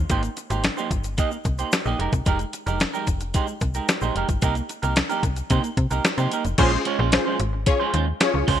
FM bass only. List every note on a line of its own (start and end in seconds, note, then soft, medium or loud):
0.10 0.29 G#1 loud
0.50 0.70 G#1 medium
0.91 1.20 G1 medium
1.45 1.64 C2 medium
1.86 1.95 A#1 loud
1.99 2.09 F1 medium
2.13 2.22 C2 medium
2.26 2.46 F1 loud
2.67 2.86 F1 loud
3.07 3.36 F1 medium
3.61 3.81 C2 medium
4.02 4.11 A#1 medium
4.16 4.25 F1 medium
4.29 4.38 G1 medium
4.42 4.62 C2 loud
4.83 5.02 C2 medium
5.23 5.42 C2 medium
5.51 5.60 C3 medium
5.77 5.87 C3 medium
5.91 6.01 C2 medium
6.18 6.28 C3 medium
6.45 6.55 F1 medium
6.58 6.78 A#1 loud
6.99 7.18 A#1 loud
7.40 7.69 G#1 loud
7.94 8.13 D#2 medium
8.34 8.44 C#2 medium
8.48 8.57 C#2 medium